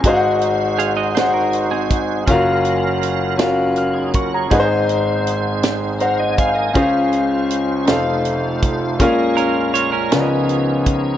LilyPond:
<<
  \new Staff \with { instrumentName = "Clean electric guitar" } { \time 6/8 \key aes \mixolydian \tempo 4. = 54 r4 <aes' f''>16 <ges' ees''>16 <ees' c''>16 bes'8 <c' aes'>8. | r2. | r2. | r2. |
r8 <des' bes'>8 <f' des''>16 <des' bes'>8 r4 r16 | }
  \new Staff \with { instrumentName = "Grand piano" } { \time 6/8 \key aes \mixolydian << { aes''16 r2 r8. | r2 f'''8 des'''16 bes''16~ | bes''16 r4. r16 <c'' ges''>16 ees''16 <f'' aes''>16 aes''16~ | aes''16 r2 r8. |
r2. | } \\ { <ees' ges' aes' c'' f'' ges''>4. <ees' ges' aes' c'' ges''>4. | <des' f' ges' bes' f''>4. <des' f' ges' bes' f''>4. | <ees' aes' ces'' c''>4. r4. | <des' f' aes' c'' f''>4. <ees' f' a' c'' f''>4. |
<des' f' aes' bes' f''>4. <des' f' bes' ces'' d'' ees''>4. | } >> }
  \new Staff \with { instrumentName = "Grand piano" } { \clef bass \time 6/8 \key aes \mixolydian <aes,, aes,>2. | <ges,, ges,>2. | <aes,, aes,>2. | <des, des>4. <f,, f,>4. |
<bes,, bes,>4. <des, des>4. | }
  \new Staff \with { instrumentName = "Tonewheel organ" } { \time 6/8 \key aes \mixolydian << { r2. | r2 r16 <ees' aes'>16 <f' bes'>16 <aes' des''>16~ | <aes' des''>16 r4. r16 <c'' f'' bes''>16 <ees'' aes''>16 <c'' f'' aes''>16 <bes' ees''>16~ | <bes' ees''>16 r2 r8. |
r2. | } \\ { <aes ees' ges' c''>2. | <ges des' bes' f''>2. | <aes c' ees' c''>2. | <aes des' f' c''>4. <a ees' f' bes' c''>4. |
<aes des' f' bes'>4. <f ces' des' ees' aes'>4. | } >> }
  \new DrumStaff \with { instrumentName = "Drums" } \drummode { \time 6/8 <hh bd>8 hh8 hh8 <hh sn>8 hh8 <hh bd>8 | <hh bd>8 hh8 hh8 <hh sn>8 hh8 <hh bd>8 | <hh bd>8 hh8 hh8 <hh sn>8 hh8 <hh bd>8 | <hh bd>8 hh8 hh8 <hh sn>8 hh8 <hh bd>8 |
<hh bd>8 hh8 hh8 <hh sn>8 hh8 <hh bd>8 | }
>>